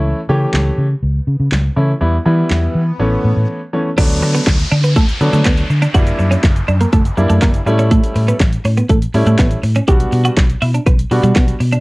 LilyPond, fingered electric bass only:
\new Staff \with { instrumentName = "Fingered electric bass" } { \clef bass \time 4/4 \key a \mixolydian \tempo 4 = 122 cis,8 cis8 cis,8 cis8 cis,8 cis16 cis16 cis,8 cis8 | e,8 e8 e,8 e8 a,,8 a,16 a,16 r4 | d,8 d8 d,8 d8 d,8 d16 d16 d,8 d8 | fis,,8 fis,8 fis,,8 fis,8 fis,,8 fis,16 fis,16 fis,,8 a,8~ |
a,8 a,8 a,,8 a,8 a,,8 a,16 a,16 a,,8 a,8 | b,,8 b,8 b,,8 b,8 b,,8 b,16 b,16 b,,8 b,8 | }